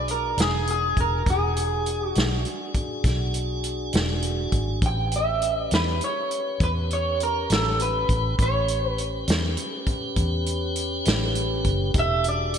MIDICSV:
0, 0, Header, 1, 5, 480
1, 0, Start_track
1, 0, Tempo, 593648
1, 1024, Time_signature, 12, 3, 24, 8
1, 10176, End_track
2, 0, Start_track
2, 0, Title_t, "Clean electric guitar"
2, 0, Program_c, 0, 27
2, 89, Note_on_c, 0, 70, 71
2, 323, Note_off_c, 0, 70, 0
2, 333, Note_on_c, 0, 68, 71
2, 562, Note_off_c, 0, 68, 0
2, 572, Note_on_c, 0, 68, 73
2, 805, Note_off_c, 0, 68, 0
2, 813, Note_on_c, 0, 70, 69
2, 1045, Note_off_c, 0, 70, 0
2, 1052, Note_on_c, 0, 68, 66
2, 1683, Note_off_c, 0, 68, 0
2, 1683, Note_on_c, 0, 66, 66
2, 1966, Note_off_c, 0, 66, 0
2, 3929, Note_on_c, 0, 79, 83
2, 4163, Note_off_c, 0, 79, 0
2, 4171, Note_on_c, 0, 76, 67
2, 4543, Note_off_c, 0, 76, 0
2, 4543, Note_on_c, 0, 74, 67
2, 4638, Note_off_c, 0, 74, 0
2, 4641, Note_on_c, 0, 71, 72
2, 4879, Note_off_c, 0, 71, 0
2, 4886, Note_on_c, 0, 73, 66
2, 5362, Note_off_c, 0, 73, 0
2, 5366, Note_on_c, 0, 71, 66
2, 5427, Note_off_c, 0, 71, 0
2, 5605, Note_on_c, 0, 73, 67
2, 5841, Note_off_c, 0, 73, 0
2, 5849, Note_on_c, 0, 70, 64
2, 6082, Note_off_c, 0, 70, 0
2, 6085, Note_on_c, 0, 69, 58
2, 6321, Note_off_c, 0, 69, 0
2, 6324, Note_on_c, 0, 71, 72
2, 6808, Note_off_c, 0, 71, 0
2, 6812, Note_on_c, 0, 73, 69
2, 7184, Note_off_c, 0, 73, 0
2, 7184, Note_on_c, 0, 71, 69
2, 7305, Note_off_c, 0, 71, 0
2, 9698, Note_on_c, 0, 76, 98
2, 9927, Note_off_c, 0, 76, 0
2, 9934, Note_on_c, 0, 74, 75
2, 10176, Note_off_c, 0, 74, 0
2, 10176, End_track
3, 0, Start_track
3, 0, Title_t, "Tonewheel organ"
3, 0, Program_c, 1, 16
3, 0, Note_on_c, 1, 62, 55
3, 0, Note_on_c, 1, 66, 59
3, 0, Note_on_c, 1, 68, 53
3, 998, Note_off_c, 1, 68, 0
3, 999, Note_off_c, 1, 62, 0
3, 999, Note_off_c, 1, 66, 0
3, 1029, Note_on_c, 1, 68, 51
3, 1031, Note_on_c, 1, 66, 55
3, 1033, Note_on_c, 1, 62, 53
3, 3878, Note_off_c, 1, 68, 0
3, 3879, Note_off_c, 1, 66, 0
3, 3880, Note_off_c, 1, 62, 0
3, 3905, Note_on_c, 1, 71, 52
3, 3906, Note_on_c, 1, 61, 56
3, 3906, Note_on_c, 1, 67, 50
3, 6755, Note_off_c, 1, 71, 0
3, 6756, Note_off_c, 1, 61, 0
3, 6756, Note_off_c, 1, 67, 0
3, 6786, Note_on_c, 1, 67, 61
3, 6790, Note_on_c, 1, 71, 61
3, 6791, Note_on_c, 1, 61, 60
3, 9636, Note_off_c, 1, 67, 0
3, 9638, Note_off_c, 1, 61, 0
3, 9638, Note_off_c, 1, 71, 0
3, 9661, Note_on_c, 1, 63, 50
3, 9661, Note_on_c, 1, 69, 50
3, 9662, Note_on_c, 1, 67, 55
3, 9895, Note_on_c, 1, 68, 57
3, 9901, Note_on_c, 1, 62, 60
3, 9902, Note_off_c, 1, 63, 0
3, 9902, Note_off_c, 1, 69, 0
3, 9903, Note_off_c, 1, 67, 0
3, 9904, Note_on_c, 1, 66, 60
3, 10176, Note_off_c, 1, 62, 0
3, 10176, Note_off_c, 1, 66, 0
3, 10176, Note_off_c, 1, 68, 0
3, 10176, End_track
4, 0, Start_track
4, 0, Title_t, "Fingered electric bass"
4, 0, Program_c, 2, 33
4, 0, Note_on_c, 2, 35, 68
4, 270, Note_off_c, 2, 35, 0
4, 303, Note_on_c, 2, 28, 69
4, 751, Note_off_c, 2, 28, 0
4, 784, Note_on_c, 2, 28, 72
4, 1005, Note_off_c, 2, 28, 0
4, 1024, Note_on_c, 2, 28, 77
4, 1711, Note_off_c, 2, 28, 0
4, 1751, Note_on_c, 2, 35, 71
4, 1969, Note_off_c, 2, 35, 0
4, 2461, Note_on_c, 2, 35, 66
4, 3150, Note_off_c, 2, 35, 0
4, 3183, Note_on_c, 2, 28, 72
4, 3631, Note_off_c, 2, 28, 0
4, 3656, Note_on_c, 2, 32, 62
4, 3881, Note_off_c, 2, 32, 0
4, 3897, Note_on_c, 2, 33, 78
4, 4588, Note_off_c, 2, 33, 0
4, 4625, Note_on_c, 2, 40, 72
4, 4845, Note_off_c, 2, 40, 0
4, 5340, Note_on_c, 2, 40, 76
4, 6029, Note_off_c, 2, 40, 0
4, 6066, Note_on_c, 2, 33, 69
4, 6512, Note_off_c, 2, 33, 0
4, 6543, Note_on_c, 2, 33, 72
4, 6764, Note_off_c, 2, 33, 0
4, 6785, Note_on_c, 2, 33, 82
4, 7472, Note_off_c, 2, 33, 0
4, 7502, Note_on_c, 2, 40, 71
4, 7724, Note_off_c, 2, 40, 0
4, 8217, Note_on_c, 2, 40, 65
4, 8908, Note_off_c, 2, 40, 0
4, 8949, Note_on_c, 2, 33, 74
4, 9394, Note_off_c, 2, 33, 0
4, 9416, Note_on_c, 2, 30, 73
4, 9640, Note_off_c, 2, 30, 0
4, 9659, Note_on_c, 2, 28, 82
4, 10176, Note_off_c, 2, 28, 0
4, 10176, End_track
5, 0, Start_track
5, 0, Title_t, "Drums"
5, 65, Note_on_c, 9, 42, 47
5, 146, Note_off_c, 9, 42, 0
5, 305, Note_on_c, 9, 42, 70
5, 327, Note_on_c, 9, 38, 88
5, 386, Note_off_c, 9, 42, 0
5, 408, Note_off_c, 9, 38, 0
5, 545, Note_on_c, 9, 42, 53
5, 626, Note_off_c, 9, 42, 0
5, 783, Note_on_c, 9, 36, 65
5, 785, Note_on_c, 9, 42, 51
5, 864, Note_off_c, 9, 36, 0
5, 866, Note_off_c, 9, 42, 0
5, 1022, Note_on_c, 9, 36, 81
5, 1024, Note_on_c, 9, 42, 56
5, 1103, Note_off_c, 9, 36, 0
5, 1105, Note_off_c, 9, 42, 0
5, 1266, Note_on_c, 9, 42, 52
5, 1347, Note_off_c, 9, 42, 0
5, 1504, Note_on_c, 9, 42, 45
5, 1585, Note_off_c, 9, 42, 0
5, 1741, Note_on_c, 9, 42, 58
5, 1763, Note_on_c, 9, 38, 78
5, 1822, Note_off_c, 9, 42, 0
5, 1844, Note_off_c, 9, 38, 0
5, 1980, Note_on_c, 9, 42, 41
5, 2061, Note_off_c, 9, 42, 0
5, 2218, Note_on_c, 9, 42, 51
5, 2220, Note_on_c, 9, 36, 64
5, 2299, Note_off_c, 9, 42, 0
5, 2301, Note_off_c, 9, 36, 0
5, 2459, Note_on_c, 9, 36, 84
5, 2459, Note_on_c, 9, 42, 66
5, 2480, Note_on_c, 9, 38, 23
5, 2539, Note_off_c, 9, 42, 0
5, 2540, Note_off_c, 9, 36, 0
5, 2561, Note_off_c, 9, 38, 0
5, 2699, Note_on_c, 9, 42, 50
5, 2780, Note_off_c, 9, 42, 0
5, 2940, Note_on_c, 9, 42, 51
5, 3021, Note_off_c, 9, 42, 0
5, 3176, Note_on_c, 9, 42, 63
5, 3197, Note_on_c, 9, 38, 90
5, 3256, Note_off_c, 9, 42, 0
5, 3278, Note_off_c, 9, 38, 0
5, 3416, Note_on_c, 9, 42, 53
5, 3496, Note_off_c, 9, 42, 0
5, 3655, Note_on_c, 9, 42, 50
5, 3657, Note_on_c, 9, 36, 57
5, 3736, Note_off_c, 9, 42, 0
5, 3738, Note_off_c, 9, 36, 0
5, 3895, Note_on_c, 9, 42, 61
5, 3897, Note_on_c, 9, 36, 90
5, 3976, Note_off_c, 9, 42, 0
5, 3978, Note_off_c, 9, 36, 0
5, 4136, Note_on_c, 9, 42, 51
5, 4217, Note_off_c, 9, 42, 0
5, 4380, Note_on_c, 9, 42, 45
5, 4460, Note_off_c, 9, 42, 0
5, 4617, Note_on_c, 9, 42, 58
5, 4638, Note_on_c, 9, 38, 85
5, 4697, Note_off_c, 9, 42, 0
5, 4719, Note_off_c, 9, 38, 0
5, 4859, Note_on_c, 9, 42, 46
5, 4940, Note_off_c, 9, 42, 0
5, 5101, Note_on_c, 9, 42, 46
5, 5182, Note_off_c, 9, 42, 0
5, 5338, Note_on_c, 9, 42, 61
5, 5339, Note_on_c, 9, 36, 87
5, 5419, Note_off_c, 9, 42, 0
5, 5420, Note_off_c, 9, 36, 0
5, 5583, Note_on_c, 9, 42, 43
5, 5664, Note_off_c, 9, 42, 0
5, 5823, Note_on_c, 9, 42, 45
5, 5904, Note_off_c, 9, 42, 0
5, 6063, Note_on_c, 9, 42, 66
5, 6084, Note_on_c, 9, 38, 87
5, 6144, Note_off_c, 9, 42, 0
5, 6165, Note_off_c, 9, 38, 0
5, 6303, Note_on_c, 9, 42, 54
5, 6384, Note_off_c, 9, 42, 0
5, 6541, Note_on_c, 9, 36, 67
5, 6543, Note_on_c, 9, 42, 53
5, 6622, Note_off_c, 9, 36, 0
5, 6624, Note_off_c, 9, 42, 0
5, 6782, Note_on_c, 9, 36, 85
5, 6782, Note_on_c, 9, 42, 67
5, 6863, Note_off_c, 9, 36, 0
5, 6863, Note_off_c, 9, 42, 0
5, 7020, Note_on_c, 9, 42, 52
5, 7101, Note_off_c, 9, 42, 0
5, 7263, Note_on_c, 9, 42, 49
5, 7344, Note_off_c, 9, 42, 0
5, 7500, Note_on_c, 9, 42, 71
5, 7522, Note_on_c, 9, 38, 90
5, 7581, Note_off_c, 9, 42, 0
5, 7603, Note_off_c, 9, 38, 0
5, 7738, Note_on_c, 9, 42, 52
5, 7818, Note_off_c, 9, 42, 0
5, 7976, Note_on_c, 9, 42, 49
5, 7978, Note_on_c, 9, 36, 63
5, 8057, Note_off_c, 9, 42, 0
5, 8059, Note_off_c, 9, 36, 0
5, 8217, Note_on_c, 9, 42, 61
5, 8219, Note_on_c, 9, 36, 75
5, 8297, Note_off_c, 9, 42, 0
5, 8299, Note_off_c, 9, 36, 0
5, 8460, Note_on_c, 9, 42, 46
5, 8541, Note_off_c, 9, 42, 0
5, 8697, Note_on_c, 9, 42, 49
5, 8778, Note_off_c, 9, 42, 0
5, 8938, Note_on_c, 9, 42, 68
5, 8959, Note_on_c, 9, 38, 92
5, 9018, Note_off_c, 9, 42, 0
5, 9040, Note_off_c, 9, 38, 0
5, 9179, Note_on_c, 9, 42, 51
5, 9260, Note_off_c, 9, 42, 0
5, 9416, Note_on_c, 9, 42, 48
5, 9418, Note_on_c, 9, 36, 61
5, 9496, Note_off_c, 9, 42, 0
5, 9499, Note_off_c, 9, 36, 0
5, 9654, Note_on_c, 9, 42, 68
5, 9657, Note_on_c, 9, 36, 87
5, 9735, Note_off_c, 9, 42, 0
5, 9738, Note_off_c, 9, 36, 0
5, 9897, Note_on_c, 9, 42, 48
5, 9977, Note_off_c, 9, 42, 0
5, 10138, Note_on_c, 9, 42, 49
5, 10176, Note_off_c, 9, 42, 0
5, 10176, End_track
0, 0, End_of_file